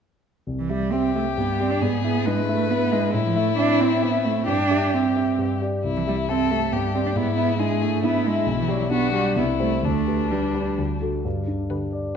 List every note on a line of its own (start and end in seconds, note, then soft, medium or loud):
0.47 0.69 C2 soft
0.59 0.71 E3 soft
0.69 0.94 G3 medium
0.69 0.90 G4 soft
0.69 0.90 E5 soft
0.92 1.14 C4 soft
0.92 1.13 C4 soft
0.92 1.83 G4 soft
0.92 1.13 G4 soft
0.92 1.13 E5 soft
1.15 1.23 A3 soft
1.15 1.35 G4 soft
1.15 1.35 E5 soft
1.37 1.59 G2 soft
1.37 1.62 B3 soft
1.59 1.72 C4 medium
1.59 1.79 G4 soft
1.59 1.80 D5 soft
1.71 1.84 D4 soft
1.81 2.03 G#2 soft
1.81 2.03 B3 medium
1.81 2.28 G#4 soft
2.04 2.27 B3 medium
2.04 2.24 E4 soft
2.04 2.24 E5 soft
2.26 2.48 G#3 medium
2.26 2.46 D4 soft
2.26 2.47 E4 soft
2.26 3.13 B4 medium
2.26 2.47 E5 soft
2.48 2.72 A3 medium
2.48 2.68 E4 soft
2.48 2.69 E5 soft
2.70 2.93 B3 medium
2.70 2.90 D4 soft
2.70 2.90 E4 soft
2.70 2.91 E5 soft
2.92 3.14 G#3 medium
2.92 3.12 E4 soft
2.92 3.12 E5 soft
3.14 3.35 A2 soft
3.14 4.45 E4 medium
3.26 3.37 F3 medium
3.36 3.57 A3 medium
3.36 3.56 E4 soft
3.36 3.56 E5 soft
3.58 3.78 C4 soft
3.58 3.82 D4 medium
3.58 3.78 E4 soft
3.58 3.79 E5 soft
3.80 4.04 C4 medium
3.80 4.00 E4 soft
3.80 4.00 E5 soft
4.02 4.26 B3 medium
4.02 4.22 C4 soft
4.02 4.23 E4 soft
4.02 4.23 E5 soft
4.25 4.48 A3 medium
4.25 4.45 E4 soft
4.25 4.46 E5 soft
4.47 4.70 G2 soft
4.47 4.96 D4 medium
4.47 5.59 G4 soft
4.70 4.91 G4 soft
4.70 4.91 E5 soft
4.93 5.14 C4 soft
4.93 5.40 C4 soft
4.93 5.14 G4 soft
4.93 5.14 E5 soft
5.15 5.36 G4 soft
5.15 5.37 E5 soft
5.38 5.61 G2 soft
5.61 5.82 G4 soft
5.61 5.82 D5 soft
5.84 6.06 C2 soft
5.84 6.31 E4 soft
5.97 6.01 E3 soft
6.07 6.16 G3 medium
6.07 6.27 G4 soft
6.07 6.27 E5 soft
6.29 6.49 C4 soft
6.29 6.53 C4 medium
6.29 6.49 G4 soft
6.29 6.74 A4 soft
6.29 6.49 E5 soft
6.51 6.74 A3 soft
6.51 6.71 G4 soft
6.51 6.71 E5 soft
6.73 6.94 G2 soft
6.73 6.94 B3 soft
6.73 7.18 G4 soft
6.94 6.99 C4 medium
6.94 7.14 G4 soft
6.94 7.14 D5 soft
7.06 7.10 D4 soft
7.16 7.37 G#2 soft
7.16 7.37 B3 medium
7.16 7.61 E4 soft
7.37 7.59 B3 medium
7.37 7.57 E4 soft
7.37 7.57 E5 soft
7.59 7.83 G#3 medium
7.59 7.79 D4 soft
7.59 7.79 E4 soft
7.59 8.04 G#4 soft
7.59 7.80 E5 soft
7.81 8.06 A3 medium
7.81 8.01 E4 soft
7.81 8.01 E5 soft
8.03 8.28 B3 medium
8.03 8.23 D4 soft
8.03 8.23 E4 soft
8.03 8.90 E4 medium
8.03 8.23 E5 soft
8.24 8.48 G#3 medium
8.24 8.45 E4 soft
8.24 8.45 E5 soft
8.46 8.68 B1 soft
8.59 8.72 E3 medium
8.68 8.91 F#3 medium
8.68 8.89 G4 soft
8.68 8.89 D5 soft
8.90 9.14 B3 medium
8.90 9.11 D4 soft
8.90 9.36 F#4 medium
8.90 9.11 G4 soft
9.13 9.37 G3 medium
9.13 9.34 G4 soft
9.13 9.35 D5 soft
9.36 9.59 C2 medium
9.36 9.45 B3 medium
9.36 9.86 E4 medium
9.60 9.82 A3 soft
9.60 9.81 G4 soft
9.60 9.81 C5 soft
9.83 10.06 D2 soft
9.83 10.32 A3 medium
9.83 11.02 D4 soft
10.07 10.28 G4 soft
10.07 10.29 B4 soft
10.31 10.78 G3 soft
10.31 10.52 D4 soft
10.31 10.52 G4 soft
10.31 10.53 B4 soft
10.55 10.76 G4 soft
10.55 10.76 B4 soft
10.78 11.01 D2 soft
11.02 11.22 F#4 soft
11.02 11.23 A4 soft
11.25 12.17 G2 soft
11.47 11.84 D4 soft
11.70 12.04 D3 soft
11.70 12.06 G4 soft
11.70 12.04 B4 soft
11.92 12.17 D5 soft